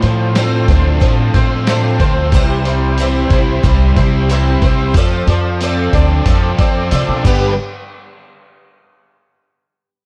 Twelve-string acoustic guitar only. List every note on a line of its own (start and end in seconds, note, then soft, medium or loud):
0.03 0.36 A3 soft
0.03 0.36 C4 soft
0.03 0.36 F4 soft
0.03 0.36 C5 medium
0.37 0.69 A2 medium
0.37 0.69 D3 medium
0.37 0.69 A3 medium
0.37 0.70 C4 medium
0.37 0.68 F4 medium
0.37 0.68 C5 medium
0.69 0.99 A3 soft
0.69 1.00 C4 medium
0.69 1.01 F4 soft
0.69 1.02 C5 medium
1.00 1.34 A3 medium
1.00 1.34 C4 medium
1.00 1.35 F4 medium
1.00 1.33 C5 medium
1.35 1.68 A3 medium
1.35 1.68 C4 medium
1.35 1.68 F4 medium
1.35 1.68 C5 medium
1.68 2.01 A2 medium
1.68 2.01 D3 medium
1.68 2.01 A3 medium
1.68 2.01 C4 medium
1.68 2.00 F4 medium
1.68 1.99 C5 medium
2.00 2.34 A3 soft
2.00 2.33 C4 medium
2.00 2.34 F4 medium
2.00 2.33 C5 medium
2.33 2.66 C3 medium
2.33 2.66 E3 medium
2.33 2.66 G3 medium
2.33 2.67 C4 medium
2.33 2.66 E4 medium
2.33 2.64 C5 loud
2.66 2.99 G3 soft
2.66 2.99 C4 soft
2.66 2.99 E4 medium
2.66 2.99 C5 medium
2.99 3.32 C3 medium
2.99 3.32 E3 medium
2.99 3.32 G3 medium
2.99 3.31 C4 medium
2.99 3.30 E4 medium
2.99 3.29 C5 medium
3.31 3.62 G3 medium
3.31 3.63 C4 medium
3.31 3.64 E4 medium
3.31 3.64 C5 medium
3.63 3.97 G3 medium
3.63 3.96 C4 medium
3.63 3.96 E4 medium
3.63 3.95 C5 medium
3.96 4.30 G3 soft
3.96 4.30 C4 soft
3.96 4.30 E4 medium
3.96 4.30 C5 medium
4.29 4.63 C3 medium
4.29 4.63 E3 medium
4.29 4.63 G3 medium
4.29 4.63 C4 medium
4.29 4.62 E4 medium
4.29 4.61 C5 medium
4.62 4.96 G3 soft
4.62 4.96 C4 medium
4.62 4.96 E4 medium
4.62 4.96 C5 medium
4.95 5.28 F3 medium
4.95 5.29 A3 medium
4.95 5.29 C4 medium
4.95 5.28 A4 medium
4.95 5.27 D5 loud
5.28 5.61 C4 soft
5.28 5.62 A4 medium
5.28 5.61 D5 medium
5.61 5.94 F3 medium
5.61 5.94 A3 medium
5.61 5.95 C4 medium
5.61 5.95 A4 medium
5.61 5.93 D5 loud
5.94 6.26 C4 medium
5.94 6.27 A4 medium
5.94 6.27 D5 medium
6.26 6.59 A3 medium
6.26 6.60 C4 medium
6.26 6.60 A4 medium
6.26 6.58 D5 medium
6.60 6.91 C4 soft
6.60 6.92 A4 medium
6.60 6.92 D5 medium
6.91 7.24 F3 medium
6.91 7.25 A3 medium
6.91 7.25 C4 medium
6.91 7.26 A4 medium
6.91 7.26 D5 medium
7.25 7.52 G3 medium
7.25 7.52 B3 medium
7.25 7.52 D4 medium
7.25 7.52 G4 medium
7.25 7.53 B4 medium